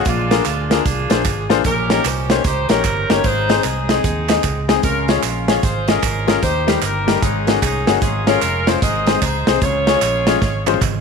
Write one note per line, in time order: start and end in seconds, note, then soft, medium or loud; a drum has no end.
0.05 0.40 A#1 loud
0.05 0.67 A#2 medium
0.05 0.82 G#3 medium
0.05 0.71 D4 medium
0.05 0.45 F4 loud
0.05 kick loud
0.05 closed hi-hat loud
0.05 tambourine medium
0.31 0.40 A#3 medium
0.31 0.40 D4 medium
0.31 0.41 F4 medium
0.31 0.41 G#4 medium
0.31 0.41 A#4 medium
0.31 snare loud
0.31 closed hi-hat medium
0.31 tambourine medium
0.45 0.79 D2 loud
0.45 0.69 F4 medium
0.45 clap loud
0.45 closed hi-hat medium
0.45 tambourine medium
0.70 0.80 A#3 medium
0.70 0.80 D4 medium
0.70 1.47 D4 medium
0.70 0.80 F4 medium
0.70 1.47 F4 medium
0.70 0.81 G#4 medium
0.70 1.51 G#4 medium
0.70 0.81 A#4 medium
0.70 snare loud
0.70 closed hi-hat medium
0.70 tambourine medium
0.86 1.07 C2 loud
0.86 kick loud
0.86 closed hi-hat loud
0.86 tambourine medium
1.10 1.27 A#1 medium
1.10 1.20 A#3 medium
1.10 1.20 D4 medium
1.10 1.20 F4 medium
1.10 1.20 G#4 medium
1.10 1.20 C5 medium
1.10 snare loud
1.10 closed hi-hat medium
1.10 tambourine medium
1.25 1.46 G#1 medium
1.25 kick loud
1.25 clap loud
1.25 closed hi-hat medium
1.25 tambourine loud
1.49 1.63 A1 medium
1.49 1.60 A#3 medium
1.49 1.60 D4 medium
1.49 1.60 F4 medium
1.49 1.60 G#4 medium
1.49 1.60 C5 loud
1.49 snare loud
1.49 closed hi-hat medium
1.49 tambourine medium
1.64 1.99 A#1 loud
1.64 2.26 A#2 medium
1.64 2.41 C#4 medium
1.64 2.41 G4 medium
1.64 1.89 A#4 loud
1.64 kick loud
1.64 closed hi-hat loud
1.64 tambourine medium
1.89 1.99 A#3 medium
1.89 2.00 C#4 medium
1.89 2.00 D#4 medium
1.89 2.00 G4 medium
1.89 2.00 A#4 medium
1.89 2.04 A#4 loud
1.89 snare loud
1.89 closed hi-hat medium
1.89 tambourine medium
2.04 2.38 C2 loud
2.04 2.30 C5 loud
2.04 clap loud
2.04 closed hi-hat medium
2.04 tambourine loud
2.30 2.39 A#3 medium
2.30 2.40 C#4 medium
2.30 2.40 D#4 medium
2.30 2.40 G4 medium
2.30 2.40 C5 medium
2.30 2.45 C#5 medium
2.30 snare loud
2.30 closed hi-hat medium
2.30 tambourine medium
2.44 2.66 C#2 loud
2.44 3.21 D#4 medium
2.44 2.69 G4 medium
2.44 2.70 C5 loud
2.44 kick loud
2.44 closed hi-hat loud
2.44 tambourine medium
2.69 2.82 A#1 loud
2.69 2.79 A#3 medium
2.69 2.79 C#4 medium
2.69 3.20 C#4 medium
2.69 2.79 D#4 medium
2.69 3.20 G4 medium
2.69 2.80 G4 medium
2.69 3.09 A#4 loud
2.69 2.80 C#5 medium
2.69 snare loud
2.69 closed hi-hat medium
2.69 tambourine medium
2.84 3.06 G1 loud
2.84 kick loud
2.84 clap loud
2.84 closed hi-hat medium
2.84 tambourine loud
3.09 3.22 G1 medium
3.09 3.19 A#3 medium
3.09 3.19 C#4 medium
3.09 3.19 D#4 medium
3.09 3.19 G4 medium
3.09 3.20 A#4 medium
3.09 3.24 C#5 loud
3.09 snare loud
3.09 closed hi-hat medium
3.09 tambourine medium
3.24 3.58 G#1 loud
3.24 3.85 G#2 medium
3.24 3.90 D#4 medium
3.24 3.64 G#4 medium
3.24 3.64 C5 loud
3.24 kick loud
3.24 closed hi-hat loud
3.24 tambourine medium
3.49 3.59 G#3 medium
3.49 3.59 C4 medium
3.49 3.59 D#4 medium
3.49 3.59 G#4 medium
3.49 3.59 C5 medium
3.49 snare loud
3.49 closed hi-hat medium
3.49 tambourine medium
3.64 3.98 C2 medium
3.64 3.89 G#4 medium
3.64 clap loud
3.64 closed hi-hat medium
3.64 tambourine medium
3.89 3.99 G#3 medium
3.89 3.99 C4 medium
3.89 4.66 C4 medium
3.89 3.99 D#4 medium
3.89 4.66 D#4 medium
3.89 3.99 G#4 medium
3.89 4.65 G#4 loud
3.89 3.99 D#5 medium
3.89 snare loud
3.89 closed hi-hat medium
3.89 tambourine medium
4.04 4.38 D#2 loud
4.04 kick loud
4.04 closed hi-hat loud
4.04 tambourine medium
4.29 4.39 G#3 medium
4.29 4.39 C4 medium
4.29 4.39 D#4 medium
4.29 4.39 G#4 medium
4.29 4.39 D#5 medium
4.29 snare loud
4.29 clap medium
4.29 closed hi-hat medium
4.29 tambourine medium
4.44 4.78 C#2 medium
4.44 kick loud
4.44 clap loud
4.44 closed hi-hat medium
4.44 tambourine loud
4.68 4.78 G#3 loud
4.68 4.78 C4 medium
4.68 4.79 D#4 medium
4.68 4.79 G#4 medium
4.68 4.79 D#5 loud
4.68 snare loud
4.68 closed hi-hat medium
4.68 tambourine medium
4.83 5.17 C#2 loud
4.83 5.45 C#3 medium
4.83 5.60 C#4 medium
4.83 5.60 F4 medium
4.83 5.08 A#4 loud
4.83 kick loud
4.83 closed hi-hat loud
4.83 tambourine medium
5.08 5.18 G#3 medium
5.08 5.18 C#4 medium
5.08 5.18 F4 medium
5.08 5.18 G#4 medium
5.08 5.18 C#5 medium
5.08 snare loud
5.08 closed hi-hat medium
5.08 tambourine medium
5.23 5.57 A#1 medium
5.23 clap loud
5.23 closed hi-hat medium
5.23 tambourine loud
5.48 5.58 G#3 medium
5.48 5.58 C#4 medium
5.48 5.58 F4 medium
5.48 5.58 G#4 medium
5.48 5.62 C#5 medium
5.48 5.58 C#5 medium
5.48 snare loud
5.48 closed hi-hat medium
5.48 tambourine medium
5.63 5.97 G#1 loud
5.63 5.88 F4 medium
5.63 6.39 G#4 medium
5.63 5.88 C5 medium
5.63 kick loud
5.63 closed hi-hat loud
5.63 tambourine medium
5.87 5.97 G#3 medium
5.87 5.98 C#4 medium
5.87 6.39 C#4 medium
5.87 5.98 F4 medium
5.87 6.39 F4 medium
5.87 5.98 G#4 medium
5.87 6.27 A#4 medium
5.87 5.98 D#5 medium
5.87 snare loud
5.87 closed hi-hat medium
5.87 tambourine medium
6.03 6.37 G#1 loud
6.03 kick medium
6.03 clap loud
6.03 closed hi-hat medium
6.03 tambourine loud
6.27 6.37 G#3 medium
6.27 6.37 C#4 medium
6.27 6.37 F4 medium
6.27 6.37 G#4 medium
6.27 6.42 A#4 medium
6.27 6.38 A#4 medium
6.27 snare loud
6.27 closed hi-hat medium
6.27 tambourine medium
6.42 6.76 D#2 loud
6.42 7.04 D#3 medium
6.42 6.82 D#4 medium
6.42 6.82 G4 medium
6.42 6.80 C5 loud
6.42 kick loud
6.42 closed hi-hat loud
6.42 tambourine medium
6.67 6.77 G3 medium
6.67 6.77 A#3 medium
6.67 6.77 D#4 medium
6.67 6.77 G4 medium
6.67 6.77 A#4 medium
6.67 snare loud
6.67 closed hi-hat medium
6.67 tambourine medium
6.82 7.16 G1 medium
6.82 7.20 D#4 medium
6.82 7.20 G4 medium
6.82 7.22 A#4 loud
6.82 clap loud
6.82 closed hi-hat loud
6.82 tambourine medium
7.07 7.17 G3 medium
7.07 7.17 A#3 medium
7.07 7.17 D#4 medium
7.07 7.17 G4 medium
7.07 7.17 A#4 medium
7.07 snare loud
7.07 closed hi-hat medium
7.07 tambourine medium
7.22 7.56 G#1 medium
7.22 7.83 G#2 medium
7.22 7.61 C#4 medium
7.22 7.61 D#4 medium
7.22 7.61 G#4 loud
7.22 kick loud
7.22 closed hi-hat loud
7.22 tambourine medium
7.47 7.57 A#3 medium
7.47 7.57 C#4 medium
7.47 7.57 D#4 medium
7.47 7.57 F#4 medium
7.47 7.57 G#4 medium
7.47 snare loud
7.47 closed hi-hat medium
7.47 tambourine medium
7.62 7.84 C2 medium
7.62 7.99 C#4 medium
7.62 7.99 D#4 medium
7.62 7.92 G#4 medium
7.62 kick medium
7.62 clap loud
7.62 closed hi-hat medium
7.62 tambourine loud
7.87 8.00 G1 loud
7.87 7.97 A#3 medium
7.87 7.97 C#4 medium
7.87 7.97 D#4 medium
7.87 7.97 F#4 medium
7.87 7.97 G#4 medium
7.87 snare loud
7.87 closed hi-hat medium
7.87 tambourine medium
8.02 8.36 G#1 loud
8.02 8.63 G#2 medium
8.02 8.26 C#4 medium
8.02 8.27 F4 medium
8.02 8.25 G#4 loud
8.02 kick loud
8.02 closed hi-hat loud
8.02 tambourine medium
8.27 8.37 G#3 medium
8.27 8.37 C#4 medium
8.27 8.78 C#4 medium
8.27 8.37 F4 medium
8.27 8.78 F4 medium
8.27 8.37 G#4 medium
8.27 8.67 A#4 loud
8.27 8.37 C#5 medium
8.27 snare loud
8.27 closed hi-hat medium
8.27 tambourine medium
8.42 8.76 F1 loud
8.42 clap loud
8.42 closed hi-hat medium
8.42 tambourine medium
8.66 8.76 G#3 medium
8.66 8.77 C#4 medium
8.66 8.77 F4 medium
8.66 8.77 G#4 medium
8.66 8.81 C5 loud
8.66 8.77 C5 medium
8.66 snare loud
8.66 closed hi-hat medium
8.66 tambourine medium
8.82 9.16 G#1 loud
8.82 9.43 G#2 medium
8.82 9.21 G#4 medium
8.82 9.21 C5 medium
8.82 9.22 D#5 loud
8.82 kick loud
8.82 closed hi-hat loud
8.82 tambourine medium
9.07 9.16 G#3 medium
9.07 9.17 C4 medium
9.07 9.17 D#4 medium
9.07 9.17 G#4 medium
9.07 9.17 C5 medium
9.07 snare loud
9.07 closed hi-hat medium
9.07 tambourine medium
9.22 9.43 C#2 loud
9.22 9.59 D#4 medium
9.22 9.59 G#4 medium
9.22 9.62 C5 loud
9.22 kick medium
9.22 clap loud
9.22 closed hi-hat medium
9.22 tambourine loud
9.47 9.59 C2 medium
9.47 9.56 G#3 medium
9.47 9.57 C4 medium
9.47 9.57 D#4 medium
9.47 9.57 G#4 medium
9.47 9.57 C5 medium
9.47 snare loud
9.47 closed hi-hat medium
9.47 tambourine medium
9.62 9.96 C#2 loud
9.62 10.23 C#3 medium
9.62 10.78 F4 medium
9.62 10.78 G#4 medium
9.62 10.78 C#5 loud
9.62 kick loud
9.62 closed hi-hat loud
9.62 tambourine medium
9.87 9.97 G#3 medium
9.87 9.97 C#4 medium
9.87 9.97 F4 medium
9.87 9.97 G#4 medium
9.87 9.97 C#5 medium
9.87 snare loud
9.87 closed hi-hat medium
9.87 tambourine medium
10.02 10.35 A#1 medium
10.02 clap loud
10.02 closed hi-hat medium
10.02 tambourine loud
10.27 10.36 G#3 medium
10.27 10.37 C#4 medium
10.27 10.37 F4 medium
10.27 10.37 G#4 medium
10.27 10.37 C#5 medium
10.27 snare loud
10.27 closed hi-hat medium
10.27 tambourine medium
10.41 10.76 G#1 loud
10.41 kick loud
10.41 snare medium
10.41 tambourine medium
10.67 10.76 G#3 medium
10.67 10.76 C#4 medium
10.67 10.77 F4 medium
10.67 10.77 G#4 medium
10.67 10.77 C5 loud
10.67 clap loud
10.67 high tom medium
10.67 tambourine medium
10.74 high tom medium
10.81 11.01 G#1 medium
10.81 kick loud
10.81 clap loud
10.81 mid tom medium
10.81 tambourine loud